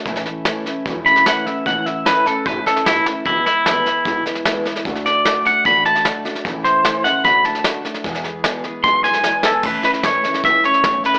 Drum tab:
CC |----------------|----------------|----------------|----------------|
HH |----p-------p---|----p-------p---|----p-------p---|----p-------p---|
SD |ooo-o-o-o-ooo-o-|o-o-o-o-o-ooo-o-|o-o-o-o-o-ooo-oo|ooo-o-o-o-ooo-oo|
BD |o-------o-------|o-------o-------|o-------o-------|o-------o-------|

CC |----------------|----------------|x---------------|
HH |----p-------p---|----p-------p---|----p-------p---|
SD |o-o-o-o-o-ooo-oo|ooo-o-o-o-ooo-o-|o-ooo-ooo-ooo-oo|
BD |o-------o-------|o-------o-------|o---o---o---o---|